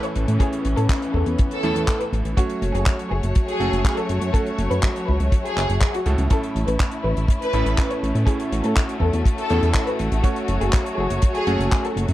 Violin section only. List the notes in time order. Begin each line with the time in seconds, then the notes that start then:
0.04 C#5
0.40 G#4
0.77 A4
1.14 A4
1.51 A4
2.00 B4
2.37 F#4
2.74 G#4
3.11 G#4
3.48 G#4
3.97 A4
4.34 A4
4.71 B4
5.07 B4
5.45 G#4
5.94 F#4
6.30 A4
6.67 B4
7.04 B4
7.41 B4
7.90 C#5
8.27 G#4
8.64 A4
9.01 A4
9.38 A4
9.87 B4
10.24 F#4
10.61 G#4
10.98 G#4
11.35 G#4
11.84 A4